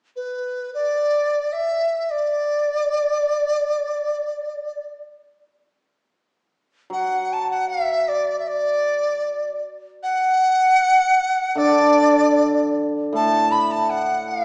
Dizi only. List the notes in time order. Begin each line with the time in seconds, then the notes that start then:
0.16 B4
0.74 D5
1.52 E5
1.99 E5
2.10 D5
6.92 F#5
7.32 A5
7.50 F#5
7.68 E5
8.08 D5
8.39 E5
8.47 D5
10.03 F#5
11.57 D5
13.15 A5
13.51 B5
13.71 A5
13.89 F#5
14.28 E5